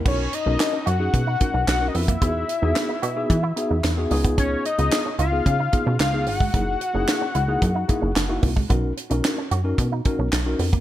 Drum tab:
CC |x---------------|----------------|----------------|----------------|
HH |--x-x-x-x-x-x-ox|x-x-x-x-x-x-x-ox|x-xxx-x-x-x-x-o-|x-x-x-x-x-x-x-o-|
CP |----x-------x---|----x-------x---|----x-------x---|----x-------x---|
SD |----o-------o---|----o-------o---|----o-------o---|----o-------o---|
BD |o-------o-o----o|o-------o------o|o-------o-o----o|o-------o-o---oo|

CC |----------------|
HH |x-xxx-x-x-x-x-ox|
CP |----x-------x---|
SD |----o-------o---|
BD |o-------o-o----o|